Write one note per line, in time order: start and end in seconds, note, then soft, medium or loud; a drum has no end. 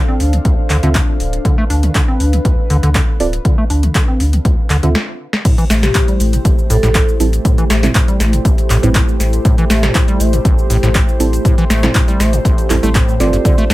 0.00 4.91 D4 medium
0.00 4.91 A4 medium
0.00 1.41 C5 medium
0.00 4.91 F5 medium
0.08 0.22 C4 medium
0.20 0.39 D2 loud
0.20 0.35 D4 medium
0.20 open hi-hat medium
0.33 0.40 D3 medium
0.33 closed hi-hat medium
0.45 0.56 D2 medium
0.45 kick loud
0.45 closed hi-hat medium
0.70 0.80 D2 medium
0.70 0.77 D3 loud
0.70 clap medium
0.70 open hi-hat loud
0.83 1.02 D2 medium
0.83 0.90 D3 loud
0.83 0.93 C4 medium
0.83 0.93 F4 medium
0.83 0.93 A4 medium
0.83 0.93 E5 medium
0.83 closed hi-hat medium
0.95 1.02 D3 medium
0.95 kick loud
0.95 clap loud
0.95 closed hi-hat medium
1.20 1.39 D1 medium
1.20 open hi-hat medium
1.33 closed hi-hat medium
1.45 1.56 D3 medium
1.45 4.92 B4 medium
1.45 kick loud
1.45 closed hi-hat medium
1.58 1.65 A3 loud
1.70 1.89 D2 loud
1.70 1.84 D4 medium
1.70 open hi-hat medium
1.83 1.93 D3 medium
1.83 closed hi-hat medium
1.95 2.02 D3 medium
1.95 kick loud
1.95 clap loud
1.95 closed hi-hat medium
2.08 2.22 C4 medium
2.20 2.39 D2 loud
2.20 2.35 D4 medium
2.20 open hi-hat medium
2.33 2.40 D3 medium
2.33 closed hi-hat medium
2.45 2.56 D2 medium
2.45 kick loud
2.45 closed hi-hat medium
2.70 2.80 D2 medium
2.70 2.77 D3 loud
2.70 open hi-hat loud
2.83 3.02 D2 medium
2.83 2.90 D3 loud
2.83 closed hi-hat medium
2.95 3.02 D3 medium
2.95 kick loud
2.95 clap loud
2.95 closed hi-hat medium
3.20 3.39 D1 medium
3.20 3.27 C4 medium
3.20 3.27 F4 medium
3.20 3.27 A4 medium
3.20 3.27 D5 loud
3.20 open hi-hat medium
3.33 closed hi-hat medium
3.45 3.56 D3 medium
3.45 kick loud
3.45 closed hi-hat medium
3.58 3.65 A3 loud
3.70 3.89 D2 loud
3.70 3.85 D4 medium
3.70 open hi-hat loud
3.83 3.93 D3 medium
3.83 closed hi-hat medium
3.95 4.02 D3 medium
3.95 kick loud
3.95 clap loud
3.95 closed hi-hat medium
4.08 4.22 C4 medium
4.20 4.39 D2 loud
4.20 4.35 D4 medium
4.20 open hi-hat medium
4.33 4.40 D3 medium
4.33 closed hi-hat medium
4.45 4.56 D2 medium
4.45 kick loud
4.45 closed hi-hat medium
4.70 4.80 D2 loud
4.70 4.77 D3 loud
4.70 clap medium
4.70 open hi-hat loud
4.83 4.95 D2 medium
4.83 4.90 D3 loud
4.83 4.93 C4 medium
4.83 4.93 F4 medium
4.83 4.93 A4 medium
4.83 4.93 E5 medium
4.83 closed hi-hat medium
4.95 snare loud
5.33 snare medium
5.45 5.56 A2 medium
5.45 13.41 A3 medium
5.45 13.41 E4 medium
5.45 13.41 G4 medium
5.45 13.74 C5 medium
5.45 kick loud
5.45 closed hi-hat medium
5.45 crash loud
5.45 cabasa soft
5.58 5.65 E3 loud
5.58 closed hi-hat soft
5.58 cabasa soft
5.70 5.89 A1 loud
5.70 5.85 A3 medium
5.70 snare medium
5.70 open hi-hat loud
5.70 cabasa medium
5.83 5.93 A2 medium
5.83 6.00 G4 medium
5.83 snare medium
5.83 closed hi-hat medium
5.83 cabasa soft
5.95 6.02 A2 medium
5.95 kick loud
5.95 clap loud
5.95 closed hi-hat medium
5.95 cabasa soft
6.08 6.22 G3 medium
6.08 closed hi-hat soft
6.08 cabasa soft
6.20 6.39 A1 loud
6.20 6.35 A3 medium
6.20 open hi-hat loud
6.20 cabasa medium
6.33 6.40 A2 medium
6.33 closed hi-hat medium
6.33 cabasa soft
6.45 6.56 A1 medium
6.45 kick loud
6.45 closed hi-hat medium
6.45 cabasa soft
6.58 cabasa soft
6.70 6.80 A1 medium
6.70 6.77 A2 loud
6.70 7.08 A4 medium
6.70 open hi-hat loud
6.70 cabasa medium
6.83 7.02 A1 medium
6.83 6.90 A2 loud
6.83 snare soft
6.83 closed hi-hat soft
6.83 cabasa soft
6.95 7.02 A2 medium
6.95 kick loud
6.95 clap loud
6.95 closed hi-hat medium
6.95 cabasa soft
7.08 cabasa soft
7.20 7.39 A1 medium
7.20 7.27 G3 loud
7.20 7.27 C4 medium
7.20 7.27 E4 medium
7.20 7.27 A4 loud
7.20 open hi-hat loud
7.20 cabasa medium
7.33 closed hi-hat soft
7.33 cabasa soft
7.45 7.56 A2 medium
7.45 kick loud
7.45 closed hi-hat medium
7.45 cabasa soft
7.58 7.65 E3 loud
7.58 closed hi-hat soft
7.58 cabasa soft
7.70 7.89 A1 loud
7.70 7.85 A3 medium
7.70 snare medium
7.70 open hi-hat loud
7.70 cabasa medium
7.83 7.93 A2 medium
7.83 7.89 G3 medium
7.83 7.89 C4 medium
7.83 7.89 E4 medium
7.83 7.89 A4 medium
7.83 snare medium
7.83 closed hi-hat medium
7.83 cabasa soft
7.95 8.02 A2 medium
7.95 kick loud
7.95 clap loud
7.95 closed hi-hat medium
7.95 cabasa soft
8.08 8.22 G3 medium
8.08 closed hi-hat soft
8.08 cabasa soft
8.20 8.39 A1 loud
8.20 8.35 A3 medium
8.20 snare medium
8.20 open hi-hat loud
8.20 cabasa medium
8.33 8.40 A2 medium
8.33 closed hi-hat medium
8.33 cabasa soft
8.45 8.56 A1 medium
8.45 kick loud
8.45 closed hi-hat medium
8.45 cabasa soft
8.58 closed hi-hat soft
8.58 cabasa soft
8.70 8.80 A1 loud
8.70 8.77 A2 loud
8.70 clap medium
8.70 open hi-hat loud
8.70 cabasa medium
8.83 9.02 A1 medium
8.83 8.90 A2 loud
8.83 8.93 G3 medium
8.83 8.93 C4 medium
8.83 8.93 E4 medium
8.83 8.93 B4 medium
8.83 closed hi-hat soft
8.83 cabasa soft
8.95 9.02 A2 medium
8.95 kick loud
8.95 clap loud
8.95 closed hi-hat medium
8.95 cabasa soft
9.09 cabasa soft
9.20 9.39 A1 medium
9.20 snare soft
9.20 open hi-hat loud
9.20 cabasa medium
9.33 closed hi-hat soft
9.33 cabasa soft
9.45 9.56 A2 medium
9.45 kick loud
9.45 closed hi-hat medium
9.45 cabasa soft
9.58 9.65 E3 loud
9.58 closed hi-hat soft
9.58 cabasa soft
9.70 9.89 A1 loud
9.70 9.85 A3 medium
9.70 snare medium
9.70 open hi-hat loud
9.70 cabasa medium
9.83 9.93 A2 medium
9.83 snare medium
9.83 closed hi-hat medium
9.83 cabasa soft
9.95 10.02 A2 medium
9.95 kick loud
9.95 clap loud
9.95 closed hi-hat medium
9.95 cabasa soft
10.08 10.22 G3 medium
10.08 closed hi-hat soft
10.08 cabasa soft
10.20 10.39 A1 loud
10.20 10.35 A3 medium
10.20 open hi-hat loud
10.20 cabasa medium
10.33 10.40 A2 medium
10.33 closed hi-hat medium
10.33 cabasa soft
10.45 10.56 A1 medium
10.45 kick loud
10.45 closed hi-hat medium
10.45 cabasa soft
10.59 cabasa soft
10.70 10.80 A1 loud
10.70 10.77 A2 loud
10.70 open hi-hat loud
10.70 cabasa medium
10.83 11.02 A1 medium
10.83 10.90 A2 loud
10.83 snare soft
10.83 closed hi-hat soft
10.83 cabasa soft
10.95 11.02 A2 medium
10.95 kick loud
10.95 clap loud
10.95 closed hi-hat medium
10.95 cabasa soft
11.09 cabasa soft
11.20 11.39 A1 loud
11.20 11.27 G3 medium
11.20 11.27 C4 medium
11.20 11.27 E4 medium
11.20 11.27 A4 loud
11.20 open hi-hat loud
11.20 cabasa medium
11.33 closed hi-hat soft
11.33 cabasa soft
11.45 11.56 A2 medium
11.45 kick loud
11.45 closed hi-hat medium
11.45 cabasa soft
11.58 11.65 E3 loud
11.58 closed hi-hat soft
11.58 cabasa soft
11.70 11.89 A1 loud
11.70 11.85 A3 medium
11.70 snare medium
11.70 open hi-hat loud
11.70 cabasa medium
11.83 11.93 A2 medium
11.83 11.89 G3 medium
11.83 11.89 C4 medium
11.83 11.89 E4 medium
11.83 11.89 A4 medium
11.83 snare medium
11.83 closed hi-hat medium
11.83 cabasa soft
11.95 12.02 A2 medium
11.95 kick loud
11.95 clap loud
11.95 closed hi-hat medium
11.95 cabasa soft
12.08 12.21 G3 medium
12.08 closed hi-hat soft
12.08 cabasa soft
12.20 12.39 A1 loud
12.20 12.34 A3 medium
12.20 snare medium
12.20 open hi-hat loud
12.20 cabasa medium
12.33 12.40 A2 medium
12.33 closed hi-hat soft
12.33 cabasa soft
12.45 12.72 A1 medium
12.45 kick loud
12.45 closed hi-hat medium
12.45 cabasa soft
12.58 closed hi-hat soft
12.58 cabasa soft
12.70 12.80 A1 medium
12.70 12.77 G2 medium
12.70 12.77 G3 medium
12.70 12.77 C4 medium
12.70 12.77 E4 medium
12.70 12.77 A4 medium
12.70 clap medium
12.70 open hi-hat loud
12.70 cabasa medium
12.83 13.02 A1 loud
12.83 12.89 G3 loud
12.83 12.90 A3 loud
12.83 12.89 C4 medium
12.83 12.89 E4 loud
12.83 12.89 A4 loud
12.83 closed hi-hat soft
12.83 cabasa soft
12.95 13.21 A2 medium
12.95 kick loud
12.95 clap loud
12.95 closed hi-hat medium
12.95 cabasa soft
13.09 cabasa soft
13.20 13.39 G1 medium
13.20 13.31 E3 medium
13.20 13.74 C4 medium
13.20 13.74 F4 medium
13.20 13.74 A4 medium
13.20 13.74 D5 loud
13.20 snare soft
13.20 open hi-hat loud
13.20 cabasa medium
13.33 13.37 G2 medium
13.33 closed hi-hat soft
13.33 cabasa soft
13.45 13.56 D3 medium
13.45 13.74 D4 medium
13.45 13.74 A4 medium
13.45 13.74 F5 medium
13.45 kick loud
13.45 closed hi-hat medium
13.45 cabasa soft
13.58 13.65 A3 loud
13.58 closed hi-hat soft
13.58 cabasa soft
13.70 13.74 D2 loud
13.70 13.74 D4 medium
13.70 snare medium
13.70 open hi-hat loud
13.70 cabasa medium